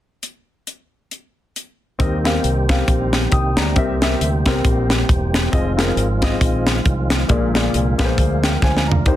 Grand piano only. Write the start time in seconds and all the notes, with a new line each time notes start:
1.99 D#3 C4 G4 A#4 D#5
2.24 C4 G4 A#4 F5
2.69 C4 G4 A#4 F5
3.32 G5 D#6
3.57 D5 A#5
3.76 C3 C4 G4 A#4 E5
4.02 C4 G4 A#4 E5
4.46 C4 G4 A#4 C5
5.52 C4 F4 G#4 D#5
5.77 C4 F4 G#4 A#4
6.22 C4 F4 G#4 D#5
7.28 A#2 A#3 F4 G#4 D5
7.54 A#3 F4 G#4 D5
7.98 A#3 F4 G#4 B4
8.05 C5
8.43 A#4 G5
8.64 C5 G#5
8.88 D5 A#5
9.06 D#3 A#3 D#4 G4 C5